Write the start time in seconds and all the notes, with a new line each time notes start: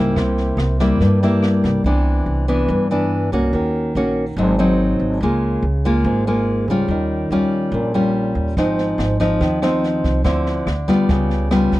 Already playing: C#2 G#2 G3 A#3 E4
0.16 C2 C3, kick, cross-stick, snare
0.37 snare
0.57 C2, cross-stick, snare
0.79 G3 A#3 E4, kick, snare
1.00 G2, kick, snare
1.22 G3 A#3 E4, snare
1.42 cross-stick, snare
1.64 C2, kick, snare
1.84 C2 C3 E3 B3 D4
2.26 C2
2.48 E3 B3 D4
2.68 G2
2.91 E3 B3 D4
3.32 C2 A#3 C#4 F#4
3.53 D#2 D#3
3.95 A#1 A#3 C#4 F#4
4.37 G#1 G#2 F#3 C4 D#4
4.59 F#3 C4 D#4
5.00 G#1
5.20 C#2 C#3 G#3 A#3 F4
5.62 C#2
5.85 G#3 A#3 F4
6.04 G#1 G#2
6.27 G#3 A#3 F4
6.68 C#2 G3 C#4 F4
6.88 D#2 D#3
7.30 D#2 G3 C#4 F4
7.72 A#1 A#2
7.94 G3 C#4 F4
8.35 D#2
8.57 G#1 G#2 F3 C4 D#4, kick, snare
8.78 snare
8.98 G#1, cross-stick, snare
9.20 F3 C4 D#4, kick, snare
9.41 D#2 D#3, kick, snare
9.62 F3 C4 D#4, cross-stick, snare
9.83 snare
10.04 C2, kick, snare
10.24 D2 D3 F3 C4 E4, kick, cross-stick, snare
10.46 snare
10.67 D2, cross-stick, snare
10.88 G3 B3 F4, kick, snare
11.09 C#2 C#3, kick, snare
11.30 snare
11.51 G3 B3 F4, cross-stick, snare
11.72 C#2, kick, snare